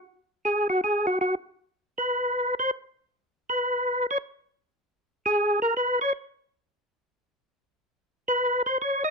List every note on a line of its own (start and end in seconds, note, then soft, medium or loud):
0.45 0.68 G#4 medium
0.70 0.81 F#4 loud
0.84 1.06 G#4 medium
1.07 1.19 F#4 medium
1.21 1.35 F#4 medium
1.98 2.55 B4 medium
2.59 2.71 C5 loud
3.50 4.07 B4 medium
4.11 4.18 C#5 loud
5.26 5.60 G#4 loud
5.62 5.74 A#4 loud
5.77 5.99 B4 medium
6.01 6.13 C#5 loud
8.28 8.63 B4 loud
8.66 8.78 C5 loud
8.82 9.03 C#5 medium
9.04 9.10 D#5 loud